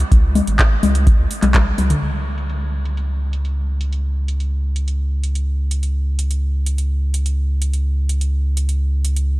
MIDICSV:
0, 0, Header, 1, 3, 480
1, 0, Start_track
1, 0, Tempo, 476190
1, 117, Time_signature, 4, 2, 24, 8
1, 9474, End_track
2, 0, Start_track
2, 0, Title_t, "Analog synth bass"
2, 0, Program_c, 0, 38
2, 116, Note_on_c, 0, 37, 102
2, 413, Note_off_c, 0, 37, 0
2, 477, Note_on_c, 0, 32, 80
2, 773, Note_off_c, 0, 32, 0
2, 836, Note_on_c, 0, 37, 88
2, 1133, Note_off_c, 0, 37, 0
2, 1198, Note_on_c, 0, 37, 101
2, 1277, Note_off_c, 0, 37, 0
2, 1436, Note_on_c, 0, 35, 105
2, 1733, Note_off_c, 0, 35, 0
2, 1796, Note_on_c, 0, 37, 97
2, 1957, Note_off_c, 0, 37, 0
2, 2036, Note_on_c, 0, 37, 89
2, 9474, Note_off_c, 0, 37, 0
2, 9474, End_track
3, 0, Start_track
3, 0, Title_t, "Drums"
3, 117, Note_on_c, 9, 36, 112
3, 118, Note_on_c, 9, 42, 55
3, 217, Note_off_c, 9, 36, 0
3, 218, Note_off_c, 9, 42, 0
3, 357, Note_on_c, 9, 46, 99
3, 357, Note_on_c, 9, 64, 90
3, 458, Note_off_c, 9, 46, 0
3, 458, Note_off_c, 9, 64, 0
3, 478, Note_on_c, 9, 42, 69
3, 579, Note_off_c, 9, 42, 0
3, 596, Note_on_c, 9, 36, 102
3, 597, Note_on_c, 9, 42, 54
3, 598, Note_on_c, 9, 39, 120
3, 697, Note_off_c, 9, 36, 0
3, 698, Note_off_c, 9, 42, 0
3, 699, Note_off_c, 9, 39, 0
3, 837, Note_on_c, 9, 46, 91
3, 837, Note_on_c, 9, 64, 90
3, 938, Note_off_c, 9, 46, 0
3, 938, Note_off_c, 9, 64, 0
3, 958, Note_on_c, 9, 42, 73
3, 1059, Note_off_c, 9, 42, 0
3, 1076, Note_on_c, 9, 36, 113
3, 1077, Note_on_c, 9, 42, 56
3, 1177, Note_off_c, 9, 36, 0
3, 1178, Note_off_c, 9, 42, 0
3, 1317, Note_on_c, 9, 46, 105
3, 1417, Note_off_c, 9, 46, 0
3, 1437, Note_on_c, 9, 42, 69
3, 1437, Note_on_c, 9, 64, 82
3, 1438, Note_on_c, 9, 39, 37
3, 1538, Note_off_c, 9, 42, 0
3, 1538, Note_off_c, 9, 64, 0
3, 1539, Note_off_c, 9, 39, 0
3, 1556, Note_on_c, 9, 36, 100
3, 1557, Note_on_c, 9, 39, 121
3, 1557, Note_on_c, 9, 42, 54
3, 1557, Note_on_c, 9, 64, 81
3, 1657, Note_off_c, 9, 36, 0
3, 1658, Note_off_c, 9, 39, 0
3, 1658, Note_off_c, 9, 42, 0
3, 1658, Note_off_c, 9, 64, 0
3, 1796, Note_on_c, 9, 46, 91
3, 1796, Note_on_c, 9, 48, 62
3, 1897, Note_off_c, 9, 46, 0
3, 1897, Note_off_c, 9, 48, 0
3, 1916, Note_on_c, 9, 42, 72
3, 1916, Note_on_c, 9, 47, 74
3, 2017, Note_off_c, 9, 42, 0
3, 2017, Note_off_c, 9, 47, 0
3, 2036, Note_on_c, 9, 42, 50
3, 2036, Note_on_c, 9, 49, 83
3, 2137, Note_off_c, 9, 42, 0
3, 2137, Note_off_c, 9, 49, 0
3, 2397, Note_on_c, 9, 42, 65
3, 2497, Note_off_c, 9, 42, 0
3, 2515, Note_on_c, 9, 42, 51
3, 2616, Note_off_c, 9, 42, 0
3, 2877, Note_on_c, 9, 42, 65
3, 2978, Note_off_c, 9, 42, 0
3, 2997, Note_on_c, 9, 42, 52
3, 3098, Note_off_c, 9, 42, 0
3, 3357, Note_on_c, 9, 42, 66
3, 3458, Note_off_c, 9, 42, 0
3, 3476, Note_on_c, 9, 42, 53
3, 3577, Note_off_c, 9, 42, 0
3, 3838, Note_on_c, 9, 42, 67
3, 3939, Note_off_c, 9, 42, 0
3, 3957, Note_on_c, 9, 42, 51
3, 4057, Note_off_c, 9, 42, 0
3, 4318, Note_on_c, 9, 42, 63
3, 4419, Note_off_c, 9, 42, 0
3, 4437, Note_on_c, 9, 42, 49
3, 4538, Note_off_c, 9, 42, 0
3, 4798, Note_on_c, 9, 42, 63
3, 4898, Note_off_c, 9, 42, 0
3, 4917, Note_on_c, 9, 42, 51
3, 5018, Note_off_c, 9, 42, 0
3, 5278, Note_on_c, 9, 42, 65
3, 5378, Note_off_c, 9, 42, 0
3, 5397, Note_on_c, 9, 42, 52
3, 5498, Note_off_c, 9, 42, 0
3, 5758, Note_on_c, 9, 42, 66
3, 5858, Note_off_c, 9, 42, 0
3, 5877, Note_on_c, 9, 42, 49
3, 5977, Note_off_c, 9, 42, 0
3, 6238, Note_on_c, 9, 42, 62
3, 6338, Note_off_c, 9, 42, 0
3, 6357, Note_on_c, 9, 42, 49
3, 6458, Note_off_c, 9, 42, 0
3, 6717, Note_on_c, 9, 42, 62
3, 6818, Note_off_c, 9, 42, 0
3, 6837, Note_on_c, 9, 42, 50
3, 6938, Note_off_c, 9, 42, 0
3, 7197, Note_on_c, 9, 42, 62
3, 7298, Note_off_c, 9, 42, 0
3, 7316, Note_on_c, 9, 42, 49
3, 7417, Note_off_c, 9, 42, 0
3, 7677, Note_on_c, 9, 42, 64
3, 7778, Note_off_c, 9, 42, 0
3, 7796, Note_on_c, 9, 42, 49
3, 7897, Note_off_c, 9, 42, 0
3, 8158, Note_on_c, 9, 42, 61
3, 8258, Note_off_c, 9, 42, 0
3, 8277, Note_on_c, 9, 42, 47
3, 8378, Note_off_c, 9, 42, 0
3, 8639, Note_on_c, 9, 42, 63
3, 8739, Note_off_c, 9, 42, 0
3, 8758, Note_on_c, 9, 42, 47
3, 8859, Note_off_c, 9, 42, 0
3, 9118, Note_on_c, 9, 42, 62
3, 9219, Note_off_c, 9, 42, 0
3, 9238, Note_on_c, 9, 42, 49
3, 9339, Note_off_c, 9, 42, 0
3, 9474, End_track
0, 0, End_of_file